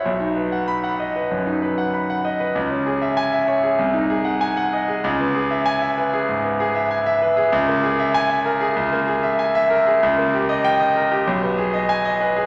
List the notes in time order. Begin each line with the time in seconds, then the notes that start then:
0.05 B1
0.20 D#4
0.36 B4
0.52 F#5
0.68 B5
0.84 F#5
0.99 D#5
1.16 B4
1.31 F#2
1.46 D#4
1.62 B4
1.78 F#5
1.94 B5
2.10 F#5
2.25 D#5
2.40 B4
2.55 C#2
2.71 C#4
2.86 G#4
3.02 E5
3.17 G#5
3.32 E5
3.48 C#5
3.63 G#4
3.79 C2
3.94 D#4
4.10 G#4
4.25 F#5
4.41 G#5
4.57 F#5
4.73 D#5
4.88 G#4
5.04 C#2
5.20 B3
5.35 G#4
5.51 E5
5.66 G#5
5.82 E5
5.98 B4
6.13 G#4
6.29 G#2
6.44 B3
6.60 G#4
6.75 E5
6.91 G#5
7.06 E5
7.22 B4
7.37 G#4
7.52 C#2
7.68 A#3
7.84 G#4
7.99 E5
8.14 G#5
8.29 E5
8.45 A#4
8.61 G#4
8.76 C#2
8.92 A#3
9.07 G#4
9.23 E5
9.39 G#5
9.55 E5
9.70 A#4
9.87 G#4
10.03 C#2
10.18 A#3
10.34 G4
10.49 D#5
10.64 G5
10.80 D#5
10.96 A#4
11.11 G4
11.27 B1
11.43 B3
11.58 G#4
11.74 D#5
11.89 G#5
12.05 D#5
12.21 B4
12.37 G#4